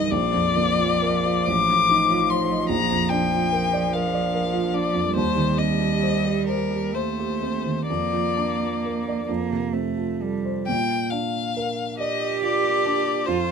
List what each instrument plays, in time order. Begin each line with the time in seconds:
Already playing: grand piano G2 G3 D#4 G4 A#4, violin D#5
0.10 grand piano A#1, cello F3, violin D5
0.34 grand piano F2
0.55 grand piano A#3
0.78 grand piano F4
1.02 grand piano A#4
1.25 grand piano F4
1.46 grand piano A1, violin D6
1.70 grand piano A2
1.90 grand piano D#4
2.10 grand piano F4
2.30 grand piano C5, violin C6
2.51 grand piano D#5
2.69 grand piano A#1, violin A#5
2.91 grand piano F2
3.10 grand piano D4, violin G5
3.32 grand piano F4
3.52 grand piano A#4
3.73 grand piano D5
3.93 grand piano A#4, violin F5
4.14 grand piano D5
4.34 grand piano A#4
4.53 grand piano F4
4.73 grand piano D4, violin D5
4.94 grand piano F2
5.15 grand piano D#2, cello G3, violin C5
5.36 grand piano D#3
5.58 grand piano C4, violin D#5
5.80 grand piano G4
6.03 grand piano C5
6.25 grand piano G4
6.47 violin A#4, grand piano C5
6.71 grand piano G4
6.93 cello A3, violin C5, grand piano C5
7.19 grand piano G4
7.42 grand piano C4
7.66 grand piano D#3
7.87 grand piano F2, cello A#3, violin D5
8.13 grand piano F3
8.37 grand piano D4
8.61 grand piano F4
8.86 grand piano A#4
9.08 grand piano D5
9.29 grand piano F2, cello A#3
9.51 grand piano C3
9.73 cello A3, grand piano C4
9.97 grand piano F4
10.22 cello G3, grand piano A4
10.45 grand piano C5
10.67 grand piano A#2, violin G5
11.10 grand piano D4, violin F5
11.57 grand piano A#4
11.98 cello G4, grand piano D5, violin D#5
12.42 grand piano F4, violin D5
12.86 grand piano D4
13.25 grand piano F2, cello F4, violin C5